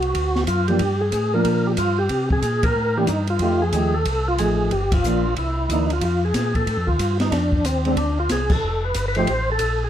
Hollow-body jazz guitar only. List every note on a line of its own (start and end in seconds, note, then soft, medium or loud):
0.69 0.79 F3 medium
0.69 0.80 A#3 medium
0.69 0.80 D4 medium
1.34 1.76 F3 medium
1.34 1.76 A#3 medium
1.34 1.77 D4 medium
2.97 3.08 E3 medium
2.97 3.08 A#3 medium
2.97 3.09 D4 medium
3.41 3.60 F3 medium
3.41 3.60 A3 medium
3.41 3.60 D#4 medium
3.41 3.60 G4 medium
3.74 3.93 F3 medium
3.74 3.93 A3 medium
3.74 3.93 D#4 medium
3.74 3.93 G4 medium
4.39 4.72 F3 medium
4.39 4.72 A3 soft
4.39 4.73 D#4 medium
5.06 5.24 F3 medium
5.06 5.24 A#3 medium
5.06 5.25 D4 medium
5.72 5.89 E3 soft
5.72 5.89 A#3 medium
5.72 5.90 D4 medium
7.86 7.97 G#3 medium
7.86 7.97 C4 medium
7.86 7.97 D4 medium
9.16 9.27 F3 medium
9.16 9.27 A3 medium
9.16 9.27 D#4 medium
9.16 9.28 G4 medium